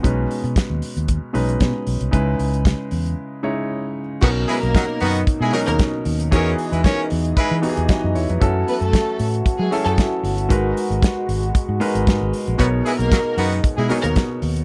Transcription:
<<
  \new Staff \with { instrumentName = "Horn section" } { \time 4/4 \key b \major \tempo 4 = 115 r1 | r1 | <dis b fis'>16 r16 <gis e' gis'>16 r16 <fis dis' ais'>16 r16 <dis b fis'>8 r16 <gis e' gis'>16 <fis dis' ais'>16 r4 r16 | <cis' ais' cis''>8 r16 <gis e' b'>16 <cis' ais' cis''>8 r8 <gis e' b'>8 r4. |
r1 | r1 | <dis b fis'>16 r16 <gis e' gis'>16 r16 <fis dis' ais'>16 r16 <dis b fis'>8 r16 <gis e' gis'>16 <fis dis' ais'>16 r4 r16 | }
  \new Staff \with { instrumentName = "String section" } { \time 4/4 \key b \major r1 | r1 | r8 <b b'>16 <ais ais'>8. r8. <gis gis'>16 r16 <ais ais'>16 r4 | r1 |
r8 <b b'>16 <a a'>8. r8. <gis gis'>16 r16 <a a'>16 r4 | r1 | r8 <b b'>16 <ais ais'>8. r8. <gis gis'>16 r16 <ais ais'>16 r4 | }
  \new Staff \with { instrumentName = "Grand piano" } { \time 4/4 \key b \major << { r1 | r1 | r1 | r2. <fis' dis''>8 <e' cis''>16 <dis' b'>16~ |
<dis' b'>16 r2. r8. | r1 | r1 | } \\ { <b, gis cis' dis' b'>4. r4 <b, gis cis' dis' b'>4 r8 | <cis gis dis' e' b'>4. r4 <cis gis dis' e' cis''>4 r8 | <b, fis cis' dis' ais'>4. r4 <b, fis cis' dis' ais'>4 r8 | <e b dis' fis' gis'>4. r4 <e b dis' fis' g' gis'>4 r8 |
<fis cis' e' fis' a'>4. r4 <fis cis' e' gis' a'>4 r8 | <gis dis' fis' ais' b'>4. r4 <gis dis' fis' ais' b'>4 r8 | <b, b dis' ais' cis''>4. r4 <b, b dis' ais' cis''>4 r8 | } >> }
  \new Staff \with { instrumentName = "French horn section" } { \clef bass \time 4/4 \key b \major << { r1 | r1 | dis'1 | e1 |
fis'1~ | fis'1 | dis'1 | } \\ { r1 | r1 | <b, ais>1 | <gis dis'>1 |
<e a>1 | <b, gis>1~ | <b, gis>1 | } >> }
  \new Staff \with { instrumentName = "Fingered electric bass" } { \clef bass \time 4/4 \key b \major b,,8 r16 b,16 r16 dis,16 r16 dis,8 r16 b,,8 b,16 r16 b,,16 c,16 | cis,8 cis,8. r16 e,8 r2 | b,,8 r16 b,,16 r8 fis,8 r16 b,16 r16 dis,16 r8 dis,8 | e,8 r16 e,16 r8 e,8 r16 e16 r16 e,16 r16 fis,16 e,16 eis,16 |
fis,8 r16 fis,16 r8 a,8 r16 fis16 r16 fis,16 r8 g,,8 | gis,,8 r16 gis,,16 r8 gis,,8 r16 gis,16 r16 gis,,16 gis,16 gis,,16 r16 ais,,16 | b,,8 r16 b,,16 r8 fis,8 r16 b,16 r16 dis,16 r8 dis,8 | }
  \new DrumStaff \with { instrumentName = "Drums" } \drummode { \time 4/4 <hh bd>8 hho16 hh16 <hh bd sn>8 hho16 hh16 <hh bd>8 hho16 hh16 <hh bd sn>8 hho16 hh16 | <hh bd>8 hho16 hh16 <hh bd sn>8 hho16 hh16 r4 r4 | <cymc bd>8 hho16 hh16 <hh bd sn>8 hho16 hh16 <hh bd>8 hho16 hh16 <hh bd sn>8 hho16 hh16 | <hh bd>8 hho16 hh16 <hh bd sn>8 hho16 hh16 <hh bd>8 hho16 hh16 <hh bd sn>8 hho16 hh16 |
<hh bd>8 hho16 hh16 <hh bd sn>8 hho16 hh16 <hh bd>8 hho16 hh16 <hh bd sn>8 hho16 hh16 | <hh bd>8 hho16 hh16 <hh bd sn>8 hho16 hh16 <hh bd>8 hho16 hh16 <hh bd sn>8 hho16 hh16 | <hh bd>8 hho16 hh16 <hh bd sn>8 hho16 hh16 <hh bd>8 hho16 hh16 <hh bd sn>8 hho16 hh16 | }
>>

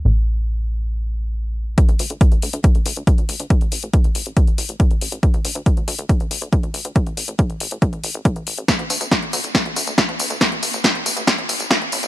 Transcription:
<<
  \new Staff \with { instrumentName = "Analog synth bass" } { \clef bass \time 4/4 \key a \phrygian \tempo 4 = 139 a,,1 | r16 d,16 d,16 d,16 r16 d,16 d,16 d,16 r16 d,16 d,16 d,16 r16 d,16 d,16 d,16 | r16 a,,16 a,,16 a,,16 r16 a,,16 a,,16 a,,16 r16 a,,16 a,,16 a,,16 r16 a,,16 a,,16 a,,16 | r16 d,16 d,16 d,16 r16 d,16 d,16 d,16 r16 d,16 d,16 d,16 r16 d,16 d,16 d,16 |
r16 a,,16 a,,16 a,,16 r16 a,,16 a,,16 a,,16 r16 a,,16 a,,16 a,,16 r16 a,,16 a,,16 a,,16 | r16 d,16 d,16 d,16 r16 d,16 d,16 d,16 r16 d,16 d,16 d,16 r16 d,16 d,16 d,16 | r16 a,,16 a,,16 a,,16 r16 a,,16 a,,16 a,,16 r16 a,,16 a,,16 a,,16 r16 a,,16 a,,16 a,,16 | }
  \new DrumStaff \with { instrumentName = "Drums" } \drummode { \time 4/4 r4 r4 r4 r4 | <hh bd>16 hh16 hho16 hh16 <hh bd>16 hh16 hho16 hh16 <hh bd>16 hh16 hho16 hh16 <hh bd>16 hh16 hho16 hh16 | <hh bd>16 hh16 hho16 hh16 <hh bd>16 hh16 hho16 hh16 <hh bd>16 hh16 hho16 hh16 <hh bd>16 hh16 hho16 hh16 | <hh bd>16 hh16 hho16 hh16 <hh bd>16 hh16 hho16 hh16 <hh bd>16 hh16 hho16 hh16 <hh bd>16 hh16 hho16 hh16 |
<hh bd>16 hh16 hho16 hh16 <hh bd>16 hh16 hho16 hh16 <hh bd>16 hh16 hho16 hh16 <hh bd>16 hh16 hho16 hh16 | <hh bd sn tamb>16 hh16 <hho tamb>16 <hh tamb>16 <hh bd sn tamb>16 hh16 <hho tamb>16 <hh tamb>16 <hh bd sn tamb>16 hh16 <hho tamb>16 <hh tamb>16 <hh bd sn tamb>16 hh16 <hho tamb>16 <hh tamb>16 | <hh bd sn tamb>16 hh16 <hho tamb>16 <hh tamb>16 <hh bd sn>16 hh16 <hho tamb>16 <hh tamb>16 <hh bd sn tamb>16 hh16 <hho tamb>16 <hh tamb>16 <hh bd sn tamb>16 hh16 <hho tamb>16 <hh tamb>16 | }
>>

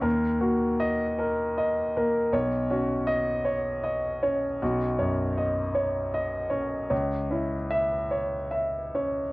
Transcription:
<<
  \new Staff \with { instrumentName = "Grand piano" } { \time 6/8 \key b \major \tempo 4. = 52 << { r4 dis''4 r4 | r4 dis''4 r4 | r2. | r4 e''4 r4 | } \\ { ais'8 fis'4 ais'8 dis''8 ais'8 | cis''8 fis'4 cis''8 dis''8 cis''8 | fis'8 cis''8 dis''8 cis''8 dis''8 cis''8 | cis''8 e'4 cis''8 e''8 cis''8 | } >> }
  \new Staff \with { instrumentName = "Grand piano" } { \time 6/8 \key b \major dis,8 ais4 r4 ais8 | b,,8 cis'4 r4 cis'8 | b,,8 fis,4 r4 cis'8 | cis,8 cis'4 r4 cis'8 | }
>>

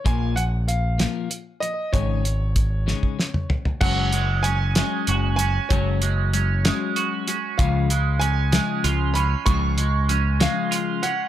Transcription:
<<
  \new Staff \with { instrumentName = "Upright piano" } { \time 6/8 \key ges \lydian \tempo 4. = 64 aes''8 ges''8 f''4 r8 ees''8 | des''2~ des''8 r8 | ges''4 aes''4. aes''8 | des''2 r4 |
f''4 aes''4. ces'''8 | des'''4. f''4 ges''8 | }
  \new Staff \with { instrumentName = "Overdriven electric guitar" } { \time 6/8 \key ges \lydian r2. | r2. | ges8 aes8 des'8 aes8 ges'8 des'8 | ges8 aes8 des'8 aes8 ges'8 des'8 |
des8 aes8 des'8 aes8 f'8 des'8 | des8 aes8 des'8 aes8 f'8 des'8 | }
  \new Staff \with { instrumentName = "Clean electric guitar" } { \clef bass \time 6/8 \key ges \lydian <bes, f bes>8 f8 r8 <bes, f bes>8 <bes, f>8 <bes, f>8 | <aes, des aes>8 <aes, des>8 r8 <aes, des aes>8 <aes, des>8 <aes, des>8 | <ges aes des'>8 <ges aes>8 <ges aes>8 <ges aes des'>4 <ges aes>8 | <ges aes des'>8 <ges aes>8 <ges aes>8 <ges aes des'>4 <ges aes>8 |
<des f aes>8 <des f>8 <des f>8 <des f aes>4 <des f>8 | <des f aes>8 <des f>8 <des f>8 <des f aes>4 <des f>8 | }
  \new Staff \with { instrumentName = "Picked electric bass" } { \clef bass \time 6/8 \key ges \lydian bes,,2 r4 | aes,,2 r4 | ges,,2 ges,,4 | ges,,2 r4 |
des,2 des,4 | des,2 r4 | }
  \new DrumStaff \with { instrumentName = "Drums" } \drummode { \time 6/8 <hh bd>8 hh8 hh8 <hh sn>8 hh8 hh8 | <hh bd>8 hh8 <hh bd>8 sn16 bd16 sn16 toml16 tomfh16 tomfh16 | <cymc bd>8 hh8 hh8 <hh sn>8 hh8 hh8 | <hh bd>8 hh8 hh8 <hh sn>8 hh8 hh8 |
<hh bd>8 hh8 hh8 <hh sn>8 hh8 hh8 | <hh bd>8 hh8 hh8 <hh sn>8 hh8 hh8 | }
>>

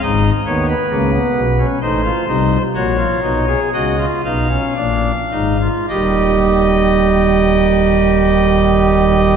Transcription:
<<
  \new Staff \with { instrumentName = "Pipe organ" } { \time 3/4 \key aes \dorian \tempo 4 = 58 << { ees''8 des''16 ces''4~ ces''16 c''4 | des''4 ees''8 f''4. | <ees g ees''>2. | } \\ { ees'8 ces'8 bes16 ces'8 des'16 ees'16 f'16 ees'8 | ges'16 f'16 ees'16 aes'16 ges'16 f'16 ees'16 des'16 d'8 ees'16 f'16 | g'2. | } >> }
  \new Staff \with { instrumentName = "Pipe organ" } { \clef bass \time 3/4 \key aes \dorian <aes,, aes,>8 <ees, ees>8 <des, des>8 <ces, ces>8 <a,, a,>8 <c, c>8 | <bes,, bes,>8 <ces, ces>8 <des, des>8 <ces, ces>8 <bes,, bes,>8 <aes,, aes,>8 | <ees,, ees,>2. | }
>>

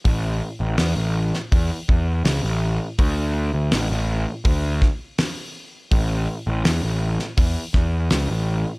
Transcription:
<<
  \new Staff \with { instrumentName = "Picked electric bass" } { \clef bass \time 4/4 \key a \major \tempo 4 = 82 a,,8 r16 a,,16 e,16 a,,8 r16 e,16 r16 e,8 cis,16 a,,8 r16 | d,8. d,16 a,,16 a,,8 r16 d,8 r4. | a,,8 r16 a,,16 e,16 a,,8 r16 e,16 r16 e,8 cis,16 a,,8 r16 | }
  \new DrumStaff \with { instrumentName = "Drums" } \drummode { \time 4/4 <hho bd>4 <hho sn>8. sn16 <hho bd>8 bd8 <hho sn>4 | <hho bd>4 <hho sn>4 <hho bd>8 <bd sn>8 <hho sn>4 | <hho bd>4 <hho sn>8. sn16 <hho bd>8 <bd sn>8 <hho sn>4 | }
>>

